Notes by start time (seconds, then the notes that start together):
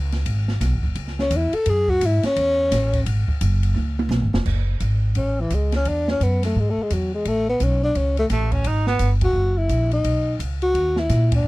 Already playing: C#2
0.12 snare, ride
0.25 G#1, kick, ride
0.48 snare
0.61 B1, kick, snare, hi-hat pedal, ride
0.72 G#1
0.83 F#1, kick
0.95 C#2, kick, ride
1.07 snare
1.19 C#4, snare
1.30 E2, kick, hi-hat pedal, ride
1.36 E4
1.53 A4, muted upright bass stroke, ride
1.66 F#2 G#4, kick, ride
1.88 F#4, kick
2.01 G#2, hi-hat pedal, ride
2.06 E4
2.23 C#4, muted upright bass stroke, snare, ride
2.36 E2, kick, ride
2.71 A1, kick, snare, hi-hat pedal, ride
2.93 kick, ride
3.06 G#1, kick, ride
3.28 muted upright bass stroke, kick
3.41 F#1, kick, hi-hat pedal, ride
3.63 ride
3.74 C#2, high tom
3.99 high tom
4.09 B1, snare, hi-hat pedal
4.21 G#1
4.33 F1, snare
4.45 F#1, kick, crash
4.80 G#1, kick, hi-hat pedal, ride
5.15 A1 C#4, kick, ride
5.40 E3
5.50 C#2 G#3, kick, hi-hat pedal, ride
5.72 C#4, snare, ride
5.85 E2 D4, kick, ride
6.08 C#4, snare
6.20 F#2 B3, kick, hi-hat pedal, ride
6.43 A3, snare, ride
6.56 G#2 G#3, kick
6.70 A3
6.77 muted upright bass stroke
6.83 G#3
6.90 E2 F#3, kick, hi-hat pedal, ride
7.15 G#3
7.25 A1 A3, kick, ride
7.49 B3
7.60 B1 C#4, kick, hi-hat pedal, ride
7.84 D4
7.95 C#2 C#4, kick, ride
8.17 A3, ride
8.30 A1 A3, kick, snare, hi-hat pedal, ride
8.52 C#4, kick, ride
8.64 G#1 D#4, kick, ride
8.87 B3, snare
8.99 G1, kick, hi-hat pedal, ride
9.21 F#4, kick, ride
9.33 F#1
9.58 E4
9.69 A#1, kick, hi-hat pedal, ride
9.91 D#4, ride
10.04 B1, kick, ride
10.39 C#2, kick, hi-hat pedal, ride
10.62 F#4, ride
10.74 D#2, kick, ride
10.96 E4, snare
11.09 A#2, kick, snare, hi-hat pedal, ride
11.32 D4, kick, ride
11.44 G#2